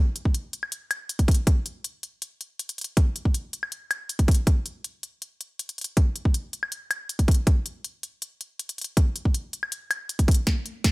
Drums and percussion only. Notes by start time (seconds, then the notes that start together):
0.16 closed hi-hat
0.25 kick
0.34 closed hi-hat
0.53 closed hi-hat
0.63 high woodblock
0.72 closed hi-hat
0.91 closed hi-hat, high woodblock
1.09 closed hi-hat
1.19 kick, closed hi-hat
1.28 kick, closed hi-hat
1.31 closed hi-hat
1.34 closed hi-hat
1.47 kick, closed hi-hat
1.66 closed hi-hat
1.84 closed hi-hat
2.03 closed hi-hat
2.22 closed hi-hat
2.41 closed hi-hat
2.59 closed hi-hat
2.69 closed hi-hat
2.78 closed hi-hat
2.81 closed hi-hat
2.84 closed hi-hat
2.97 kick, closed hi-hat
3.16 closed hi-hat
3.25 kick
3.34 closed hi-hat
3.53 closed hi-hat
3.63 high woodblock
3.72 closed hi-hat
3.91 closed hi-hat, high woodblock
4.09 closed hi-hat
4.19 kick, closed hi-hat
4.28 kick, closed hi-hat
4.31 closed hi-hat
4.34 closed hi-hat
4.47 kick, closed hi-hat
4.66 closed hi-hat
4.84 closed hi-hat
5.03 closed hi-hat
5.22 closed hi-hat
5.41 closed hi-hat
5.59 closed hi-hat
5.69 closed hi-hat
5.78 closed hi-hat
5.81 closed hi-hat
5.84 closed hi-hat
5.97 kick, closed hi-hat
6.16 closed hi-hat
6.25 kick
6.34 closed hi-hat
6.53 closed hi-hat
6.63 high woodblock
6.72 closed hi-hat
6.91 closed hi-hat, high woodblock
7.09 closed hi-hat
7.19 kick, closed hi-hat
7.28 kick, closed hi-hat
7.31 closed hi-hat
7.34 closed hi-hat
7.47 kick, closed hi-hat
7.66 closed hi-hat
7.84 closed hi-hat
8.03 closed hi-hat
8.22 closed hi-hat
8.41 closed hi-hat
8.59 closed hi-hat
8.69 closed hi-hat
8.78 closed hi-hat
8.81 closed hi-hat
8.84 closed hi-hat
8.97 kick, closed hi-hat
9.16 closed hi-hat
9.25 kick
9.34 closed hi-hat
9.53 closed hi-hat
9.63 high woodblock
9.72 closed hi-hat
9.91 closed hi-hat, high woodblock
10.09 closed hi-hat
10.19 kick, closed hi-hat
10.28 kick, closed hi-hat
10.31 closed hi-hat
10.34 closed hi-hat
10.47 kick, snare, closed hi-hat
10.66 closed hi-hat
10.84 kick, snare, closed hi-hat